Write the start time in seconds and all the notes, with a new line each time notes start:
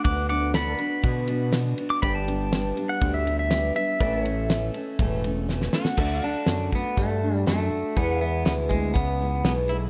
0.04 D2 D3 B3 D4 F#4 F#5 D6, kick, ride
0.29 B3 D4 F#4 F#5 D6, ride
0.54 D3 D4 F#4 A4 D5 F#5 B5, snare, ride
0.78 B3 D4 F#4 B4, ride
1.02 B2 D3 B3 D4 F#4, kick, ride
1.27 B3 D4 F#4, ride
1.52 D3 B3 D4 F#4, snare, ride
1.77 B3 D4 F#4, ride
1.90 D6
2.01 G1 G2 D3 G3 B3 D4 G4 B4 D5 G5 B5, kick, ride
2.15 A5
2.27 G3 B3 D4 G4, ride
2.51 G3 B3 D4 G4, snare, ride
2.76 G3 B3 D4 G4, ride
2.89 F#5
3.00 D2 G2 D3 G3 B3 D4 G4, kick, ride
3.14 E5
3.25 G3 B3 D4 G4, ride
3.39 E5
3.50 G3 B3 D4 G4, snare, ride
3.75 G3 B3 D4 G4 E5, ride
3.99 A1 A2 E3 A3 C#4 A4 B4 D5 E5, kick, ride
4.22 C#4 A4 C#5, ride
4.26 A3 A4
4.49 E3 A3 C#4 A4, snare, ride
4.74 A3 C#4 A4, ride
4.99 E1 A2 E3 A3 C#4 A4, kick, ride
5.24 A3 C#4 A4, ride
5.49 E3 A3 C#4 A4, snare
5.62 snare
5.73 A3 C#4 F#4 A4, snare
5.85 snare
5.97 D2 D3 A3 D4 F#4 A4 D5 E5, kick, crash
6.23 D2 A3 D4 F#4 F#5
6.46 F#2 D3 A3 D4 F#4, snare, open hi-hat
6.72 F#2 A3 B3 D4 F#4, kick
6.97 G2 D3 A3 D4 F#4, kick, open hi-hat
7.22 A3 D4 F#4
7.47 F#2 D3 A3 D4 F#4, snare, open hi-hat
7.70 F#2 A3 D4 F#4
7.96 E2 B2 E3 G#3 B3 E4 G#4 B4 F#5, kick, open hi-hat
8.20 E3 G#3 B3 E4
8.24 E5
8.46 D2 E2 B2 E3 G#3 B3 E4, snare, open hi-hat
8.71 E3 G#3 B3 E4, kick
8.94 C#2 E3 G#3 B3, kick, open hi-hat
8.98 B3 E4
9.20 E3 G#3 B3 E4
9.44 B1 E2 B2 E3 G#3 B3 E4, snare, open hi-hat
9.70 E3 G#3 B3 E4